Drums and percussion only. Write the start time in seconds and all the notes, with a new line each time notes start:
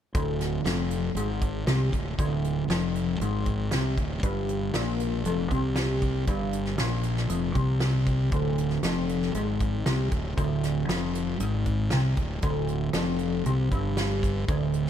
0.15 kick, closed hi-hat
0.41 snare, closed hi-hat
0.66 snare, closed hi-hat
0.91 closed hi-hat
1.16 closed hi-hat
1.41 kick, closed hi-hat
1.67 snare, closed hi-hat
1.93 kick, closed hi-hat
2.19 kick, closed hi-hat
2.44 closed hi-hat
2.70 snare, closed hi-hat
2.95 closed hi-hat
3.21 closed hi-hat
3.46 kick, closed hi-hat
3.71 snare, closed hi-hat
3.97 kick, closed hi-hat
4.23 kick, closed hi-hat
4.49 closed hi-hat
4.74 snare, closed hi-hat
5.00 closed hi-hat
5.25 closed hi-hat
5.51 kick, closed hi-hat
5.76 snare, closed hi-hat
6.02 kick, closed hi-hat
6.27 kick, closed hi-hat
6.53 closed hi-hat
6.66 snare
6.78 snare, closed hi-hat
7.03 closed hi-hat
7.17 snare
7.29 closed hi-hat
7.55 kick, closed hi-hat
7.80 snare, closed hi-hat
8.06 kick, closed hi-hat
8.31 kick, closed hi-hat
8.58 closed hi-hat
8.70 snare
8.83 snare, closed hi-hat
9.09 closed hi-hat
9.22 snare
9.34 closed hi-hat
9.60 kick, closed hi-hat
9.86 snare, closed hi-hat
10.11 kick, closed hi-hat
10.37 kick, closed hi-hat
10.63 snare, closed hi-hat
10.89 snare, closed hi-hat
11.15 closed hi-hat
11.40 closed hi-hat
11.66 kick, closed hi-hat
11.90 snare, closed hi-hat
12.17 kick, closed hi-hat
12.42 kick, closed hi-hat
12.68 closed hi-hat
12.93 snare, closed hi-hat
13.19 closed hi-hat
13.46 closed hi-hat
13.71 kick, closed hi-hat
13.97 snare, closed hi-hat
14.23 kick, closed hi-hat
14.48 kick, closed hi-hat
14.73 closed hi-hat
14.87 snare